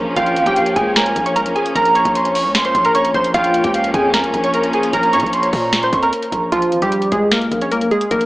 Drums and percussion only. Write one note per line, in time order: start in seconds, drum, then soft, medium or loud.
0.16 kick loud
0.16 closed hi-hat medium
0.26 closed hi-hat medium
0.36 closed hi-hat medium
0.46 kick medium
0.46 closed hi-hat medium
0.56 closed hi-hat medium
0.66 closed hi-hat medium
0.76 kick loud
0.76 closed hi-hat medium
0.96 finger snap medium
0.96 snare loud
0.96 closed hi-hat medium
1.06 closed hi-hat medium
1.16 kick loud
1.16 closed hi-hat medium
1.26 closed hi-hat medium
1.36 closed hi-hat medium
1.46 closed hi-hat medium
1.56 closed hi-hat soft
1.66 closed hi-hat medium
1.76 kick loud
1.76 closed hi-hat medium
1.85 closed hi-hat medium
1.95 closed hi-hat medium
2.05 kick loud
2.05 closed hi-hat medium
2.15 closed hi-hat medium
2.25 closed hi-hat medium
2.35 open hi-hat medium
2.55 finger snap medium
2.55 snare loud
2.55 closed hi-hat medium
2.65 closed hi-hat medium
2.75 kick loud
2.75 closed hi-hat medium
2.85 closed hi-hat medium
2.95 closed hi-hat medium
3.05 closed hi-hat medium
3.14 kick loud
3.14 closed hi-hat soft
3.24 closed hi-hat medium
3.34 kick loud
3.34 closed hi-hat medium
3.44 closed hi-hat medium
3.54 closed hi-hat medium
3.64 kick medium
3.64 closed hi-hat medium
3.74 closed hi-hat medium
3.84 closed hi-hat medium
3.94 kick loud
3.94 closed hi-hat medium
4.14 finger snap loud
4.14 snare loud
4.14 closed hi-hat medium
4.24 closed hi-hat medium
4.34 kick loud
4.34 closed hi-hat medium
4.44 closed hi-hat medium
4.54 closed hi-hat medium
4.63 closed hi-hat medium
4.73 closed hi-hat soft
4.83 closed hi-hat medium
4.93 kick loud
4.93 closed hi-hat medium
5.03 closed hi-hat medium
5.13 closed hi-hat medium
5.20 kick medium
5.20 closed hi-hat medium
5.26 closed hi-hat soft
5.33 closed hi-hat medium
5.43 closed hi-hat medium
5.53 kick loud
5.53 open hi-hat medium
5.73 finger snap medium
5.73 snare loud
5.73 closed hi-hat medium
5.83 closed hi-hat medium
5.93 kick loud
5.93 closed hi-hat medium
6.03 closed hi-hat medium
6.13 closed hi-hat medium
6.23 closed hi-hat medium
6.32 kick medium
6.32 closed hi-hat medium
6.52 kick loud
6.52 closed hi-hat medium
6.62 closed hi-hat medium
6.72 closed hi-hat medium
6.82 kick medium
6.82 closed hi-hat medium
6.92 closed hi-hat medium
7.02 closed hi-hat medium
7.12 kick loud
7.12 closed hi-hat medium
7.31 finger snap medium
7.31 snare loud
7.31 closed hi-hat medium
7.42 closed hi-hat medium
7.52 kick loud
7.52 closed hi-hat medium
7.61 closed hi-hat medium
7.72 closed hi-hat medium
7.81 closed hi-hat medium
7.91 closed hi-hat soft
8.01 closed hi-hat medium
8.11 kick loud
8.11 closed hi-hat medium
8.21 closed hi-hat medium